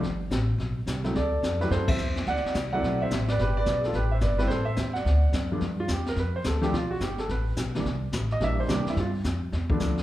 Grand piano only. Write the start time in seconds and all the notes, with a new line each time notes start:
1.04 F#3 A3 C4 E4
1.16 A4 D5
1.61 F#3 A3 C4 E4 G4 B4
1.71 A4 C5
1.89 C5 E5
2.28 D5 F#5
2.73 F#3 A3 C4 E4 D5 F#5
3.02 C5 E5
3.29 B4 D5
3.41 G4 B4
3.57 B4 D5
3.79 G#4
3.85 F4 A4
3.95 G4 B4
4.11 C5 E5
4.22 B4 D5
4.38 G3 B3 C4 E4 G4 B4
4.47 A4 C5
4.65 C5 E5
4.93 D5 F#5
5.52 G2 F3 A3 B3 D4
5.80 F4
5.92 G4
6.08 A#4
6.19 B4
6.36 C5
6.47 A4
6.61 F3 A3 B3 D4 G4
6.74 F4
6.91 F#4
7.02 G4
7.19 A4
7.31 B4
7.76 E3 G3 A#3 D4
8.32 D#5
8.41 E3 G3 A#3 D4 E5
8.60 C5
8.68 E3 G3 A#3 D4 G4
8.90 E4
9.00 F4
9.70 F3 A3 B3 D4